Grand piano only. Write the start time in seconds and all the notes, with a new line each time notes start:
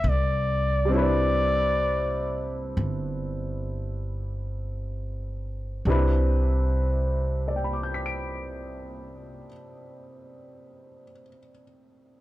0.85 G3 C4
0.91 D4 E4
0.97 B4
5.87 C3 C4 D4 E4 B4
7.48 D5
7.56 G5
7.64 B5
7.73 D6
7.83 G6
7.94 B6
8.06 D7